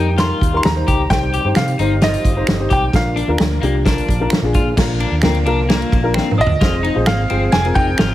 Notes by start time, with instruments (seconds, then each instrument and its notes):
Already playing: fingered electric bass F2, tonewheel organ D#3 G3 A#3 G4, upright piano D#4 G4 A#4, grand piano G5
0.18 upright piano D#4 G4 A#4, clean electric guitar F4, grand piano C6, snare, closed hi-hat
0.41 fingered electric bass D#2, kick, closed hi-hat
0.53 upright piano D#4 G4 A#4, grand piano C6
0.63 fingered electric bass D#2, grand piano A#5, finger snap, snare, closed hi-hat
0.75 upright piano D#4 G4 C5
0.88 fingered electric bass C#2, clean electric guitar G4, kick, closed hi-hat
1.10 fingered electric bass C2, tonewheel organ D#3 C4 G4, upright piano D#4 G4 C5, grand piano G5, kick, snare, closed hi-hat
1.33 clean electric guitar G4, closed hi-hat
1.44 fingered electric bass G2, upright piano D#4 G4 C5
1.55 fingered electric bass C3, grand piano F5, finger snap, snare, closed hi-hat
1.68 closed hi-hat
1.79 fingered electric bass G1, clean electric guitar D#4, upright piano D#4 G4 C5, closed hi-hat
2.01 upright piano D#4 G4 C5, clean electric guitar F4, grand piano D#5, snare, closed hi-hat
2.13 closed hi-hat
2.25 fingered electric bass G1, kick, closed hi-hat
2.36 upright piano D#4 G4 C5
2.47 fingered electric bass G1, finger snap, snare, closed hi-hat
2.59 upright piano D#4 G4 C5
2.70 fingered electric bass B1, clean electric guitar G4, grand piano G5, kick, closed hi-hat
2.92 fingered electric bass A#1, tonewheel organ D3 F3 A#3 F4, upright piano D4 F4 A#4, grand piano F5, kick, snare, closed hi-hat
3.16 clean electric guitar D4, closed hi-hat
3.28 fingered electric bass D#2, upright piano D4 F4 A#4
3.38 fingered electric bass D2, finger snap, snare, closed hi-hat
3.62 fingered electric bass C2, clean electric guitar A#3, upright piano D4 F4 G4, closed hi-hat
3.85 upright piano D4 F4 A#4, clean electric guitar D4, kick, snare, closed hi-hat
3.98 closed hi-hat
4.08 fingered electric bass A#1, kick, closed hi-hat
4.20 upright piano D4 F4 A#4
4.30 finger snap, muted fingered electric bass stroke, snare, closed hi-hat
4.42 fingered electric bass A#1, upright piano D4 F4 G#4
4.54 fingered electric bass A#2, clean electric guitar F4, kick, closed hi-hat
4.76 fingered electric bass A#1, tonewheel organ D3 F3 A#3 F4, upright piano A#3 D4 F4 A#4, kick, snare, crash
5.00 clean electric guitar D4, ride
5.11 fingered electric bass D#2
5.22 fingered electric bass D2, upright piano A#3 D4 F4 A#4, clean electric guitar C4, finger snap, snare, ride
5.35 ride
5.46 fingered electric bass C2, upright piano A#3 D4 F4 A#4, clean electric guitar D4, ride
5.69 upright piano A#3 D4 F4 A#4, clean electric guitar A#3, snare, ride
5.82 ride
5.92 fingered electric bass A#1, kick, ride
6.03 upright piano A#3 D4 F4 A#4
6.14 clean electric guitar C4, upright piano D4 A#4, finger snap, snare
6.31 mid tom
6.38 fingered electric bass A#1, clean electric guitar D4, upright piano F4 D5, grand piano D#5, glockenspiel D#6
6.46 fingered electric bass D2, floor tom
6.60 fingered electric bass F1, tonewheel organ F3 G#3 C4 G#4, upright piano C4 F4 G#4 C5, clean electric guitar F4, kick, snare, ride
6.83 clean electric guitar D#4, ride
6.95 fingered electric bass A#1, upright piano C4 F4 G#4 C5
7.06 fingered electric bass G#1, clean electric guitar A#3, grand piano F5, glockenspiel F6, finger snap, snare, ride
7.30 fingered electric bass G1, upright piano C4 F4 G#4 C5, clean electric guitar C4, ride
7.52 fingered electric bass F1, clean electric guitar C4, grand piano G#5, glockenspiel G#6, snare, ride
7.65 upright piano C4 F4 G#4 A#4, ride
7.75 fingered electric bass F1, clean electric guitar D#4, grand piano G5, glockenspiel G6, kick, ride
7.98 fingered electric bass G#1, clean electric guitar F4, finger snap, snare, ride